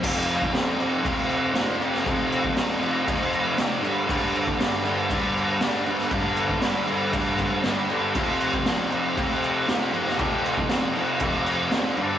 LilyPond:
<<
  \new Staff \with { instrumentName = "Distorted electric guitar" } { \clef bass \time 4/4 \key f \lydian \tempo 4 = 118 <f, c f>4 <f, c f>8 <f, c f>8 <f, c f>4 <f, c f>8 <f, c f>8 | <f, c f>4 <f, c f>8 <f, c f>8 <f, c f>4 <f, c f>8 <g, d g>8 | <g, d g>4 <g, d g>8 <g, d g>8 <g, d g>4 <g, d g>8 <g, d g>8 | <g, d g>4 <g, d g>8 <g, d g>8 <g, d g>4 <g, d g>8 <g, d g>8 |
<f, c f>4 <f, c f>8 <f, c f>8 <f, c f>4 <f, c f>8 <f, c f>8 | <f, c f>4 <f, c f>8 <f, c f>8 <f, c f>4 <f, c f>8 <g, d g>8 | }
  \new DrumStaff \with { instrumentName = "Drums" } \drummode { \time 4/4 <cymc bd>8 cymc16 bd16 <cymc sn>8 cymc8 <cymc bd>8 cymc8 <cymc sn>8 cymc16 sn16 | <cymc bd>8 cymc16 bd16 <cymc sn>8 cymc8 <cymc bd>8 cymc8 <cymc sn>8 cymc8 | <cymc bd>8 cymc16 bd16 <cymc sn>8 cymc8 <cymc bd>8 cymc8 <cymc sn>8 cymc16 sn16 | <cymc bd>8 cymc16 bd16 <cymc sn>8 cymc8 <cymc bd>8 <cymc bd>8 <cymc sn>8 cymc8 |
<cymc bd>8 cymc16 bd16 <cymc sn>8 cymc8 <cymc bd>8 cymc8 <cymc sn>8 cymc16 sn16 | <cymc bd>8 cymc16 bd16 <cymc sn>8 cymc8 <cymc bd>8 cymc8 <cymc sn>8 cymc8 | }
>>